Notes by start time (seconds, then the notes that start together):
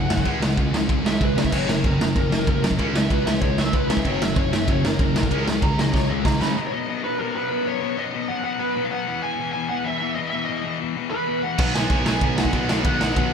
Already playing: C#4 F#5
0.10 F#2 C#3 F#3, snare
0.17 kick
0.24 C#2 C#3 G#3 C#4, kick, ride
0.41 C#3 G#3, snare
0.57 C#2 C#3 G#3, kick, ride
0.72 C#2 C#3 G#3, snare
0.89 C#2 C#3 G#3, kick, ride
1.05 C#2 C#3 G#3 E5, snare
1.21 C#2 C#3 G#3 B4, kick, ride
1.35 C#3 G#3 C#4 E5, snare
1.45 kick
1.52 F#1 F#2 C#3 F#3 C#5, kick, crash
1.68 F#2 C#3 A#4, snare
1.84 F#1 F#2 C#3, kick, ride
1.99 F#1 F#2 C#3, snare
2.15 F#1 F#2 C#3, kick, ride
2.31 F#1 F#2 C#3, snare
2.47 F#1 F#2 C#3, kick, ride
2.62 F#2 C#3 F#3, snare
2.71 kick
2.79 C#2 C#3 G#3 C#4, kick, ride
2.94 C#3 G#3 E5, snare
3.10 C#2 C#3 G#3 B4, kick, ride
3.26 C#2 C#3 G#3 E5, snare
3.41 C#2 C#3 G#3 C#5, kick, ride
3.58 C#2 C#3 G#3 E5, snare
3.73 C#2 C#3 G#3 B4, kick, ride
3.88 C#3 G#3 C#4 E5, snare
3.97 kick
4.04 F#1 F#2 C#3 F#3 C#5, kick, ride
4.21 F#2 C#3 E5, snare
4.36 F#1 F#2 C#3 C#5, kick, ride
4.52 F#1 F#2 C#3 E5, snare
4.68 F#1 F#2 C#3 C#5, kick, ride
4.85 F#1 F#2 C#3 A#4, snare
4.99 F#1 F#2 C#3, kick, ride
5.14 B1 F#2 C#3 F#3, snare
5.23 kick
5.31 C#2 C#3 G#3 C#4, kick, ride
5.47 C#3 G#3, snare
5.62 C#2 C#3 G#3 A#5, kick, ride
5.79 C#2 C#3 G#3 D#5, snare
5.94 C#2 C#3 G#3 C#5, kick, snare
6.10 C#2 C#3 G#3 D#5 F5
6.25 C#2 C#3 G#3 A#5, kick, snare
6.40 C#3 G#3 C#4 D#5 B5, snare
6.57 B2 F#3 B3
6.67 C#5
6.73 B2 F#3 B3 D#5
6.88 B2 F#3 B3
7.03 B2 F#3 B3 B4
7.19 B2 F#3 B3 A#4
7.36 B2 F#3 B3 B4
7.51 B2 F#3 B3
7.66 B2 F#3 B3 C#5
7.81 B2 F#3 B3
7.97 B2 F#3 B3 D#5
8.13 B2 F#3 B3
8.28 B2 F#3 B3 F#5
8.44 B2 F#3 B3 F#5
8.59 B2 F#3 B3 B4
8.75 B2 F#3 B3
8.84 F5
8.91 B2 F#3 B3 F#5
9.06 E2 B2 E3
9.23 E2 B2 E3 G#5
9.39 E2 B2 E3
9.52 E2 B2 E3 G#5
9.69 E2 B2 E3 F#5
9.84 E2 B2 E3 E5
9.98 E2 B2 E3 E5
10.15 E2 B2 E3 D#5
10.30 E2 B2 E3 E5
10.45 E3 D#5
10.49 E2 B2
10.64 E2 B2 E3
10.81 E2 B2 E3
10.96 E2 B2 E3
11.10 E2 B2 E3 B4
11.28 E2 B2 E3
11.43 E2 B2 E3 F#5
11.58 B1 B2 F#3 B3, kick, crash
11.74 B2 F#3 B3 G#5, snare
11.90 B1 B2 F#3 B3, kick, ride
12.05 B1 B2 F#3 B3 G#5, snare
12.21 B1 B2 F#3 B3, kick, ride
12.37 B2 F#3 B3 F#5, snare
12.45 kick
12.53 B1 B2 F#3 B3, kick, ride
12.69 B1 B2 F#3 B3 F5, snare
12.84 B1 B2 F#3 B3 F#5, kick, ride
13.00 B1 B2 F#3 B3 F#5, snare
13.16 B1 B2 F#3 B3, kick, ride